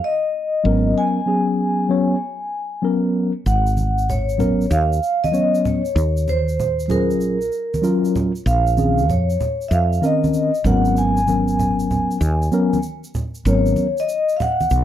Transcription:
0.04 1.00 D#5 medium
0.64 0.92 G#1 medium
0.64 1.18 F#3 medium
0.64 1.19 B3 medium
0.64 1.19 C#4 medium
0.64 1.19 A#4 medium
0.98 2.80 G#5 medium
1.26 1.88 F#3 medium
1.26 1.88 B3 medium
1.26 1.89 C#4 medium
1.26 2.17 G#4 medium
1.89 2.14 F#3 medium
1.89 2.15 B3 medium
1.89 2.15 C#4 medium
1.89 2.15 C#5 medium
2.82 3.31 F#3 medium
2.82 3.31 B3 medium
2.82 3.31 C#4 medium
2.82 3.32 A#4 medium
3.46 4.67 G#1 medium
3.46 4.11 F#5 loud
3.46 shaker medium
3.67 shaker soft
3.77 high conga soft
3.77 shaker soft
3.98 shaker soft
4.10 4.73 C#5 medium
4.10 low conga medium
4.10 shaker medium
4.29 shaker soft
4.38 4.64 F#3 medium
4.38 4.64 B3 medium
4.38 4.64 C#4 medium
4.38 4.65 A#4 medium
4.38 low conga medium
4.38 shaker soft
4.61 shaker soft
4.71 4.99 D#2 medium
4.71 5.25 F5 medium
4.71 shaker medium
4.93 shaker soft
5.03 shaker soft
5.24 5.66 D#5 medium
5.24 high conga medium
5.24 shaker soft
5.31 5.80 F#3 medium
5.31 5.81 B3 medium
5.31 5.81 C#4 medium
5.31 5.81 C#5 medium
5.31 shaker medium
5.55 shaker soft
5.65 6.30 C#5 medium
5.65 low conga medium
5.65 shaker soft
5.85 shaker soft
5.96 7.21 D#2 loud
5.96 shaker medium
6.17 shaker soft
6.28 6.85 C5 medium
6.28 high conga soft
6.28 shaker soft
6.48 shaker soft
6.60 low conga medium
6.60 shaker medium
6.79 shaker soft
6.86 7.37 F#3 medium
6.86 7.37 C#4 medium
6.86 7.37 F4 medium
6.86 6.90 C5 medium
6.86 low conga medium
6.86 shaker soft
6.90 7.38 G#4 medium
6.90 8.12 A#4 medium
7.11 shaker soft
7.21 7.49 A#1 medium
7.21 shaker medium
7.42 shaker soft
7.52 shaker soft
7.74 high conga medium
7.74 shaker soft
7.82 8.31 F#3 medium
7.82 8.31 C#4 medium
7.82 8.31 F4 medium
7.82 8.32 A#4 medium
7.82 shaker medium
8.05 shaker soft
8.16 low conga medium
8.16 shaker soft
8.35 shaker soft
8.46 9.09 A#1 loud
8.46 9.11 F5 medium
8.46 shaker medium
8.67 shaker soft
8.77 9.02 D#3 medium
8.77 9.02 C4 medium
8.77 9.02 C#4 medium
8.77 9.03 G#4 medium
8.77 high conga soft
8.77 shaker soft
8.98 shaker soft
9.09 9.36 F2 medium
9.09 9.63 C#5 medium
9.09 low conga medium
9.09 shaker soft
9.30 shaker soft
9.41 low conga medium
9.41 shaker soft
9.61 shaker soft
9.68 9.99 F2 medium
9.68 9.72 E5 medium
9.68 shaker medium
9.73 10.01 F5 medium
9.93 shaker soft
10.01 10.50 D#3 medium
10.01 10.50 C4 medium
10.01 10.50 C#4 medium
10.01 10.51 A#4 medium
10.01 10.62 D#5 medium
10.01 shaker soft
10.24 high conga medium
10.24 shaker soft
10.33 shaker medium
10.54 shaker soft
10.64 12.03 G#1 medium
10.64 11.19 F#3 medium
10.64 11.19 B3 medium
10.64 11.19 C#4 medium
10.64 11.20 A#4 medium
10.64 10.98 F#5 medium
10.64 low conga medium
10.64 shaker soft
10.85 shaker soft
10.97 12.81 G#5 loud
10.97 shaker medium
11.17 shaker soft
11.27 12.17 F#3 medium
11.27 12.17 B3 medium
11.27 12.17 C#4 medium
11.27 12.18 A#4 medium
11.27 high conga soft
11.27 shaker soft
11.48 shaker soft
11.59 low conga medium
11.59 shaker medium
11.79 shaker soft
11.91 low conga medium
11.91 shaker soft
12.11 shaker soft
12.21 12.49 D#2 medium
12.21 shaker medium
12.42 shaker soft
12.52 12.77 F#3 medium
12.52 12.77 B3 medium
12.52 12.78 C#4 medium
12.52 12.78 A#4 loud
12.52 shaker soft
12.73 high conga medium
12.73 shaker soft
12.83 shaker medium
13.04 shaker soft
13.15 low conga medium
13.15 shaker soft
13.35 shaker soft
13.45 13.73 G#1 loud
13.45 13.85 F#3 medium
13.45 13.86 B3 medium
13.45 13.86 C#4 medium
13.45 13.86 A#4 medium
13.45 13.96 C#5 medium
13.45 shaker medium
13.66 shaker soft
13.76 high conga soft
13.76 shaker soft
13.97 14.33 D#5 medium
13.97 shaker soft
14.09 shaker medium
14.29 shaker soft
14.37 14.41 F5 medium
14.37 low conga medium
14.37 shaker soft
14.42 14.84 F#5 loud
14.61 high conga medium
14.61 shaker soft
14.70 14.84 B1 medium
14.70 shaker medium

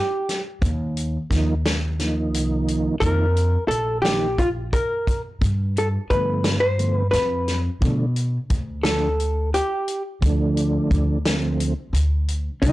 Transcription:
0.00 0.41 G4 medium
0.29 snare soft
0.29 closed hi-hat medium
0.62 1.16 D#2 medium
0.62 kick loud
0.62 closed hi-hat medium
0.97 closed hi-hat soft
1.30 2.32 D#2 medium
1.30 1.54 D#3 medium
1.30 1.54 F3 medium
1.30 1.55 A#3 medium
1.30 1.55 D#4 medium
1.30 kick medium
1.30 snare soft
1.30 closed hi-hat medium
1.66 snare medium
1.66 closed hi-hat medium
1.99 2.95 D#3 medium
1.99 2.95 F3 medium
1.99 2.96 A#3 medium
1.99 2.96 D#4 medium
1.99 snare soft
1.99 closed hi-hat soft
2.32 2.86 C2 medium
2.32 closed hi-hat medium
2.68 closed hi-hat soft
3.00 3.55 F2 medium
3.00 3.25 D#3 medium
3.00 3.26 F3 soft
3.00 3.26 A#3 soft
3.00 3.26 D#4 medium
3.00 3.68 A#4 medium
3.00 kick medium
3.00 closed hi-hat medium
3.37 closed hi-hat medium
3.68 4.77 A#1 medium
3.68 4.01 A4 medium
3.68 closed hi-hat medium
4.02 4.27 D#3 medium
4.02 4.27 F3 medium
4.02 4.28 A#3 soft
4.02 4.28 D#4 medium
4.02 4.38 G4 medium
4.02 snare medium
4.02 closed hi-hat medium
4.38 4.48 F4 medium
4.38 kick medium
4.38 closed hi-hat medium
4.73 5.21 A#4 medium
4.73 kick medium
4.73 closed hi-hat medium
5.07 kick medium
5.07 closed hi-hat medium
5.41 5.95 G2 medium
5.41 kick medium
5.41 closed hi-hat medium
5.77 5.87 A4 medium
5.77 closed hi-hat soft
6.10 7.14 G2 medium
6.10 6.58 D3 medium
6.10 6.58 F3 soft
6.10 6.58 A3 medium
6.10 6.59 B3 medium
6.10 6.60 B4 medium
6.10 kick medium
6.10 closed hi-hat medium
6.44 snare medium
6.44 closed hi-hat medium
6.60 6.96 C5 medium
6.78 7.03 D3 medium
6.78 7.03 F3 medium
6.78 7.03 A3 medium
6.78 7.03 B3 medium
6.78 closed hi-hat soft
6.96 7.09 B4 medium
7.11 7.67 F2 medium
7.11 7.60 B4 medium
7.11 snare soft
7.11 closed hi-hat medium
7.48 snare soft
7.48 closed hi-hat soft
7.81 8.36 B2 medium
7.81 8.05 D3 medium
7.81 8.05 F3 medium
7.81 8.06 A3 medium
7.81 8.06 D4 medium
7.81 kick loud
7.81 closed hi-hat medium
8.16 closed hi-hat soft
8.50 9.59 D2 medium
8.50 kick medium
8.50 closed hi-hat medium
8.83 9.08 D3 medium
8.83 9.09 F3 medium
8.83 9.09 A3 medium
8.83 9.09 D4 medium
8.83 9.54 A4 medium
8.83 snare medium
8.83 closed hi-hat medium
9.20 closed hi-hat soft
9.54 10.02 G4 medium
9.54 closed hi-hat medium
9.88 closed hi-hat medium
10.21 10.77 D2 medium
10.21 11.18 D3 medium
10.21 11.18 F3 medium
10.21 11.19 A3 medium
10.21 11.19 D4 medium
10.21 kick loud
10.21 closed hi-hat medium
10.57 closed hi-hat medium
10.91 11.72 D2 medium
10.91 kick medium
10.91 closed hi-hat medium
11.25 11.74 D3 medium
11.25 11.74 F3 medium
11.25 11.74 A3 medium
11.25 11.74 C4 medium
11.25 snare loud
11.25 closed hi-hat medium
11.60 closed hi-hat medium
11.93 12.48 D2 medium
11.93 closed hi-hat medium
12.28 closed hi-hat soft
12.62 12.72 C2 medium
12.62 12.72 D#3 medium
12.62 12.72 G3 medium
12.62 12.72 C4 medium
12.62 12.72 D#4 medium
12.62 12.72 D5 medium
12.62 kick medium
12.62 closed hi-hat medium

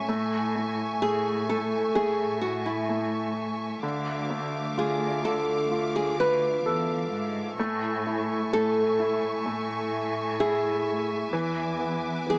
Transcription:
0.00 0.10 C#4 soft
0.00 0.10 A4 soft
0.00 7.54 E5 soft
0.00 3.79 G#5 medium
0.00 3.79 C#6 medium
0.08 0.98 A2 medium
0.08 0.54 A3 medium
0.56 1.01 A3 soft
1.02 1.91 A2 medium
1.02 1.48 A3 soft
1.02 1.49 G#4 medium
1.49 1.95 A3 soft
1.49 1.95 A4 medium
1.95 3.79 A2 medium
1.95 2.88 A3 soft
1.95 2.41 G#4 medium
2.41 2.66 F#4 medium
2.66 3.32 E4 medium
2.89 3.80 A3 soft
3.81 4.73 D2 medium
3.81 5.23 D3 medium
3.81 7.54 F5 soft
3.81 7.54 D6 medium
4.30 6.14 A3 soft
4.77 5.67 D2 medium
4.77 5.70 F4 soft
4.77 5.25 G#4 medium
5.24 7.08 D3 soft
5.24 5.91 A4 medium
5.71 6.60 D2 medium
5.71 7.54 F4 soft
5.96 6.19 G#4 medium
6.20 7.08 B4 medium
6.65 7.09 E2 medium
6.65 7.56 A4 soft
7.12 7.55 G#2 medium
7.58 8.48 A2 loud
7.58 11.30 A3 medium
7.58 8.51 A3 medium
7.58 12.38 E5 medium
7.58 12.38 G#5 medium
7.58 11.29 C#6 medium
8.07 8.98 E4 soft
8.52 9.41 A2 medium
8.52 9.44 A3 soft
8.52 9.42 A4 medium
8.99 10.39 E4 soft
9.45 11.29 A2 medium
9.45 11.29 A3 soft
10.40 11.31 E4 soft
10.40 11.29 G#4 medium
11.33 12.23 E2 medium
11.33 12.25 E3 medium
11.33 12.38 B4 medium
11.33 12.38 D6 medium
11.79 12.38 B3 soft
12.26 12.38 E2 medium
12.26 12.38 E3 soft
12.26 12.38 G#4 medium

